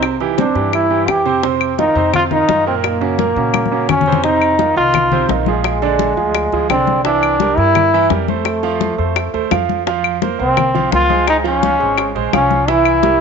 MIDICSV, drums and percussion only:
0, 0, Header, 1, 2, 480
1, 0, Start_track
1, 0, Tempo, 351494
1, 41, Time_signature, 4, 2, 24, 8
1, 18034, End_track
2, 0, Start_track
2, 0, Title_t, "Drums"
2, 35, Note_on_c, 9, 60, 72
2, 40, Note_on_c, 9, 75, 67
2, 47, Note_on_c, 9, 63, 34
2, 172, Note_off_c, 9, 60, 0
2, 177, Note_off_c, 9, 75, 0
2, 183, Note_off_c, 9, 63, 0
2, 278, Note_on_c, 9, 60, 37
2, 287, Note_on_c, 9, 63, 32
2, 415, Note_off_c, 9, 60, 0
2, 423, Note_off_c, 9, 63, 0
2, 519, Note_on_c, 9, 60, 59
2, 525, Note_on_c, 9, 63, 89
2, 656, Note_off_c, 9, 60, 0
2, 662, Note_off_c, 9, 63, 0
2, 758, Note_on_c, 9, 60, 36
2, 765, Note_on_c, 9, 63, 35
2, 895, Note_off_c, 9, 60, 0
2, 901, Note_off_c, 9, 63, 0
2, 999, Note_on_c, 9, 60, 66
2, 999, Note_on_c, 9, 63, 34
2, 1002, Note_on_c, 9, 75, 63
2, 1135, Note_off_c, 9, 63, 0
2, 1136, Note_off_c, 9, 60, 0
2, 1139, Note_off_c, 9, 75, 0
2, 1232, Note_on_c, 9, 63, 35
2, 1369, Note_off_c, 9, 63, 0
2, 1475, Note_on_c, 9, 63, 34
2, 1477, Note_on_c, 9, 60, 71
2, 1477, Note_on_c, 9, 61, 83
2, 1477, Note_on_c, 9, 75, 63
2, 1612, Note_off_c, 9, 63, 0
2, 1613, Note_off_c, 9, 60, 0
2, 1613, Note_off_c, 9, 61, 0
2, 1614, Note_off_c, 9, 75, 0
2, 1714, Note_on_c, 9, 63, 38
2, 1716, Note_on_c, 9, 60, 32
2, 1850, Note_off_c, 9, 63, 0
2, 1852, Note_off_c, 9, 60, 0
2, 1959, Note_on_c, 9, 60, 75
2, 1959, Note_on_c, 9, 63, 34
2, 2095, Note_off_c, 9, 60, 0
2, 2096, Note_off_c, 9, 63, 0
2, 2196, Note_on_c, 9, 75, 71
2, 2203, Note_on_c, 9, 63, 36
2, 2332, Note_off_c, 9, 75, 0
2, 2340, Note_off_c, 9, 63, 0
2, 2440, Note_on_c, 9, 60, 60
2, 2440, Note_on_c, 9, 63, 56
2, 2577, Note_off_c, 9, 60, 0
2, 2577, Note_off_c, 9, 63, 0
2, 2674, Note_on_c, 9, 63, 35
2, 2810, Note_off_c, 9, 63, 0
2, 2916, Note_on_c, 9, 75, 70
2, 2918, Note_on_c, 9, 60, 68
2, 2919, Note_on_c, 9, 63, 33
2, 2919, Note_on_c, 9, 64, 80
2, 3052, Note_off_c, 9, 75, 0
2, 3054, Note_off_c, 9, 60, 0
2, 3055, Note_off_c, 9, 63, 0
2, 3055, Note_off_c, 9, 64, 0
2, 3153, Note_on_c, 9, 63, 31
2, 3153, Note_on_c, 9, 64, 72
2, 3290, Note_off_c, 9, 63, 0
2, 3290, Note_off_c, 9, 64, 0
2, 3396, Note_on_c, 9, 60, 75
2, 3396, Note_on_c, 9, 61, 82
2, 3399, Note_on_c, 9, 63, 79
2, 3533, Note_off_c, 9, 60, 0
2, 3533, Note_off_c, 9, 61, 0
2, 3535, Note_off_c, 9, 63, 0
2, 3641, Note_on_c, 9, 63, 38
2, 3777, Note_off_c, 9, 63, 0
2, 3873, Note_on_c, 9, 63, 34
2, 3876, Note_on_c, 9, 75, 64
2, 3880, Note_on_c, 9, 60, 73
2, 4010, Note_off_c, 9, 63, 0
2, 4012, Note_off_c, 9, 75, 0
2, 4017, Note_off_c, 9, 60, 0
2, 4115, Note_on_c, 9, 63, 34
2, 4116, Note_on_c, 9, 60, 35
2, 4251, Note_off_c, 9, 63, 0
2, 4252, Note_off_c, 9, 60, 0
2, 4353, Note_on_c, 9, 63, 84
2, 4354, Note_on_c, 9, 60, 58
2, 4490, Note_off_c, 9, 63, 0
2, 4491, Note_off_c, 9, 60, 0
2, 4595, Note_on_c, 9, 63, 36
2, 4596, Note_on_c, 9, 60, 33
2, 4732, Note_off_c, 9, 60, 0
2, 4732, Note_off_c, 9, 63, 0
2, 4830, Note_on_c, 9, 75, 70
2, 4834, Note_on_c, 9, 63, 86
2, 4835, Note_on_c, 9, 60, 68
2, 4967, Note_off_c, 9, 75, 0
2, 4971, Note_off_c, 9, 63, 0
2, 4972, Note_off_c, 9, 60, 0
2, 4992, Note_on_c, 9, 63, 77
2, 5129, Note_off_c, 9, 63, 0
2, 5311, Note_on_c, 9, 60, 70
2, 5311, Note_on_c, 9, 61, 87
2, 5314, Note_on_c, 9, 75, 58
2, 5316, Note_on_c, 9, 64, 94
2, 5448, Note_off_c, 9, 60, 0
2, 5448, Note_off_c, 9, 61, 0
2, 5450, Note_off_c, 9, 75, 0
2, 5452, Note_off_c, 9, 64, 0
2, 5476, Note_on_c, 9, 64, 96
2, 5546, Note_on_c, 9, 60, 33
2, 5613, Note_off_c, 9, 64, 0
2, 5631, Note_on_c, 9, 64, 110
2, 5682, Note_off_c, 9, 60, 0
2, 5768, Note_off_c, 9, 64, 0
2, 5785, Note_on_c, 9, 60, 72
2, 5790, Note_on_c, 9, 63, 34
2, 5922, Note_off_c, 9, 60, 0
2, 5927, Note_off_c, 9, 63, 0
2, 6030, Note_on_c, 9, 75, 70
2, 6031, Note_on_c, 9, 63, 35
2, 6166, Note_off_c, 9, 75, 0
2, 6168, Note_off_c, 9, 63, 0
2, 6267, Note_on_c, 9, 60, 61
2, 6268, Note_on_c, 9, 63, 83
2, 6403, Note_off_c, 9, 60, 0
2, 6405, Note_off_c, 9, 63, 0
2, 6744, Note_on_c, 9, 60, 67
2, 6752, Note_on_c, 9, 63, 36
2, 6752, Note_on_c, 9, 64, 84
2, 6756, Note_on_c, 9, 75, 64
2, 6880, Note_off_c, 9, 60, 0
2, 6889, Note_off_c, 9, 63, 0
2, 6889, Note_off_c, 9, 64, 0
2, 6893, Note_off_c, 9, 75, 0
2, 6986, Note_on_c, 9, 63, 33
2, 6986, Note_on_c, 9, 64, 74
2, 7123, Note_off_c, 9, 63, 0
2, 7123, Note_off_c, 9, 64, 0
2, 7222, Note_on_c, 9, 63, 82
2, 7229, Note_on_c, 9, 60, 68
2, 7229, Note_on_c, 9, 61, 85
2, 7358, Note_off_c, 9, 63, 0
2, 7366, Note_off_c, 9, 60, 0
2, 7366, Note_off_c, 9, 61, 0
2, 7461, Note_on_c, 9, 63, 91
2, 7597, Note_off_c, 9, 63, 0
2, 7706, Note_on_c, 9, 60, 77
2, 7710, Note_on_c, 9, 63, 34
2, 7715, Note_on_c, 9, 75, 67
2, 7843, Note_off_c, 9, 60, 0
2, 7846, Note_off_c, 9, 63, 0
2, 7852, Note_off_c, 9, 75, 0
2, 7948, Note_on_c, 9, 60, 32
2, 7950, Note_on_c, 9, 63, 36
2, 8085, Note_off_c, 9, 60, 0
2, 8087, Note_off_c, 9, 63, 0
2, 8183, Note_on_c, 9, 63, 90
2, 8184, Note_on_c, 9, 60, 58
2, 8320, Note_off_c, 9, 63, 0
2, 8321, Note_off_c, 9, 60, 0
2, 8429, Note_on_c, 9, 63, 34
2, 8566, Note_off_c, 9, 63, 0
2, 8666, Note_on_c, 9, 60, 69
2, 8671, Note_on_c, 9, 75, 65
2, 8672, Note_on_c, 9, 63, 32
2, 8802, Note_off_c, 9, 60, 0
2, 8808, Note_off_c, 9, 75, 0
2, 8809, Note_off_c, 9, 63, 0
2, 8909, Note_on_c, 9, 60, 34
2, 8912, Note_on_c, 9, 63, 34
2, 9046, Note_off_c, 9, 60, 0
2, 9049, Note_off_c, 9, 63, 0
2, 9147, Note_on_c, 9, 60, 75
2, 9147, Note_on_c, 9, 61, 86
2, 9148, Note_on_c, 9, 63, 79
2, 9149, Note_on_c, 9, 75, 64
2, 9284, Note_off_c, 9, 60, 0
2, 9284, Note_off_c, 9, 61, 0
2, 9285, Note_off_c, 9, 63, 0
2, 9286, Note_off_c, 9, 75, 0
2, 9386, Note_on_c, 9, 60, 32
2, 9388, Note_on_c, 9, 63, 85
2, 9522, Note_off_c, 9, 60, 0
2, 9525, Note_off_c, 9, 63, 0
2, 9624, Note_on_c, 9, 60, 74
2, 9634, Note_on_c, 9, 63, 34
2, 9761, Note_off_c, 9, 60, 0
2, 9770, Note_off_c, 9, 63, 0
2, 9872, Note_on_c, 9, 75, 72
2, 9876, Note_on_c, 9, 63, 36
2, 10008, Note_off_c, 9, 75, 0
2, 10013, Note_off_c, 9, 63, 0
2, 10104, Note_on_c, 9, 63, 85
2, 10105, Note_on_c, 9, 60, 62
2, 10240, Note_off_c, 9, 63, 0
2, 10242, Note_off_c, 9, 60, 0
2, 10587, Note_on_c, 9, 60, 68
2, 10590, Note_on_c, 9, 75, 67
2, 10594, Note_on_c, 9, 63, 34
2, 10594, Note_on_c, 9, 64, 84
2, 10723, Note_off_c, 9, 60, 0
2, 10727, Note_off_c, 9, 75, 0
2, 10730, Note_off_c, 9, 63, 0
2, 10730, Note_off_c, 9, 64, 0
2, 10831, Note_on_c, 9, 63, 34
2, 10967, Note_off_c, 9, 63, 0
2, 11064, Note_on_c, 9, 60, 69
2, 11064, Note_on_c, 9, 61, 84
2, 11067, Note_on_c, 9, 63, 83
2, 11200, Note_off_c, 9, 60, 0
2, 11200, Note_off_c, 9, 61, 0
2, 11203, Note_off_c, 9, 63, 0
2, 11312, Note_on_c, 9, 63, 92
2, 11448, Note_off_c, 9, 63, 0
2, 11541, Note_on_c, 9, 60, 70
2, 11550, Note_on_c, 9, 75, 64
2, 11554, Note_on_c, 9, 63, 34
2, 11678, Note_off_c, 9, 60, 0
2, 11686, Note_off_c, 9, 75, 0
2, 11691, Note_off_c, 9, 63, 0
2, 11786, Note_on_c, 9, 60, 35
2, 11792, Note_on_c, 9, 63, 36
2, 11923, Note_off_c, 9, 60, 0
2, 11928, Note_off_c, 9, 63, 0
2, 12027, Note_on_c, 9, 60, 57
2, 12027, Note_on_c, 9, 63, 89
2, 12163, Note_off_c, 9, 63, 0
2, 12164, Note_off_c, 9, 60, 0
2, 12274, Note_on_c, 9, 63, 34
2, 12410, Note_off_c, 9, 63, 0
2, 12510, Note_on_c, 9, 60, 71
2, 12513, Note_on_c, 9, 75, 67
2, 12516, Note_on_c, 9, 63, 31
2, 12647, Note_off_c, 9, 60, 0
2, 12650, Note_off_c, 9, 75, 0
2, 12652, Note_off_c, 9, 63, 0
2, 12755, Note_on_c, 9, 63, 33
2, 12756, Note_on_c, 9, 60, 34
2, 12892, Note_off_c, 9, 60, 0
2, 12892, Note_off_c, 9, 63, 0
2, 12991, Note_on_c, 9, 60, 74
2, 12991, Note_on_c, 9, 61, 88
2, 12995, Note_on_c, 9, 63, 80
2, 12998, Note_on_c, 9, 75, 68
2, 13127, Note_off_c, 9, 60, 0
2, 13127, Note_off_c, 9, 61, 0
2, 13131, Note_off_c, 9, 63, 0
2, 13135, Note_off_c, 9, 75, 0
2, 13236, Note_on_c, 9, 60, 34
2, 13238, Note_on_c, 9, 63, 86
2, 13373, Note_off_c, 9, 60, 0
2, 13374, Note_off_c, 9, 63, 0
2, 13478, Note_on_c, 9, 63, 35
2, 13479, Note_on_c, 9, 60, 81
2, 13615, Note_off_c, 9, 63, 0
2, 13616, Note_off_c, 9, 60, 0
2, 13714, Note_on_c, 9, 75, 72
2, 13718, Note_on_c, 9, 63, 36
2, 13851, Note_off_c, 9, 75, 0
2, 13854, Note_off_c, 9, 63, 0
2, 13955, Note_on_c, 9, 63, 90
2, 13956, Note_on_c, 9, 60, 63
2, 14092, Note_off_c, 9, 63, 0
2, 14093, Note_off_c, 9, 60, 0
2, 14436, Note_on_c, 9, 60, 71
2, 14439, Note_on_c, 9, 75, 68
2, 14444, Note_on_c, 9, 63, 33
2, 14444, Note_on_c, 9, 64, 81
2, 14572, Note_off_c, 9, 60, 0
2, 14575, Note_off_c, 9, 75, 0
2, 14580, Note_off_c, 9, 63, 0
2, 14580, Note_off_c, 9, 64, 0
2, 14687, Note_on_c, 9, 63, 34
2, 14687, Note_on_c, 9, 64, 71
2, 14823, Note_off_c, 9, 63, 0
2, 14823, Note_off_c, 9, 64, 0
2, 14917, Note_on_c, 9, 60, 73
2, 14917, Note_on_c, 9, 61, 87
2, 14921, Note_on_c, 9, 63, 80
2, 15054, Note_off_c, 9, 60, 0
2, 15054, Note_off_c, 9, 61, 0
2, 15058, Note_off_c, 9, 63, 0
2, 15158, Note_on_c, 9, 63, 90
2, 15294, Note_off_c, 9, 63, 0
2, 15396, Note_on_c, 9, 75, 65
2, 15400, Note_on_c, 9, 60, 82
2, 15402, Note_on_c, 9, 63, 37
2, 15532, Note_off_c, 9, 75, 0
2, 15536, Note_off_c, 9, 60, 0
2, 15539, Note_off_c, 9, 63, 0
2, 15643, Note_on_c, 9, 60, 33
2, 15646, Note_on_c, 9, 63, 33
2, 15779, Note_off_c, 9, 60, 0
2, 15783, Note_off_c, 9, 63, 0
2, 15881, Note_on_c, 9, 60, 59
2, 15883, Note_on_c, 9, 63, 89
2, 16017, Note_off_c, 9, 60, 0
2, 16020, Note_off_c, 9, 63, 0
2, 16121, Note_on_c, 9, 63, 33
2, 16257, Note_off_c, 9, 63, 0
2, 16354, Note_on_c, 9, 75, 71
2, 16360, Note_on_c, 9, 63, 33
2, 16363, Note_on_c, 9, 60, 69
2, 16490, Note_off_c, 9, 75, 0
2, 16496, Note_off_c, 9, 63, 0
2, 16500, Note_off_c, 9, 60, 0
2, 16601, Note_on_c, 9, 63, 36
2, 16604, Note_on_c, 9, 60, 37
2, 16737, Note_off_c, 9, 63, 0
2, 16741, Note_off_c, 9, 60, 0
2, 16840, Note_on_c, 9, 63, 89
2, 16842, Note_on_c, 9, 75, 69
2, 16843, Note_on_c, 9, 60, 71
2, 16843, Note_on_c, 9, 61, 91
2, 16977, Note_off_c, 9, 63, 0
2, 16979, Note_off_c, 9, 60, 0
2, 16979, Note_off_c, 9, 61, 0
2, 16979, Note_off_c, 9, 75, 0
2, 17079, Note_on_c, 9, 63, 84
2, 17080, Note_on_c, 9, 60, 33
2, 17216, Note_off_c, 9, 60, 0
2, 17216, Note_off_c, 9, 63, 0
2, 17322, Note_on_c, 9, 60, 77
2, 17322, Note_on_c, 9, 63, 38
2, 17458, Note_off_c, 9, 60, 0
2, 17459, Note_off_c, 9, 63, 0
2, 17554, Note_on_c, 9, 75, 73
2, 17566, Note_on_c, 9, 63, 34
2, 17691, Note_off_c, 9, 75, 0
2, 17702, Note_off_c, 9, 63, 0
2, 17795, Note_on_c, 9, 60, 63
2, 17797, Note_on_c, 9, 63, 86
2, 17932, Note_off_c, 9, 60, 0
2, 17934, Note_off_c, 9, 63, 0
2, 18034, End_track
0, 0, End_of_file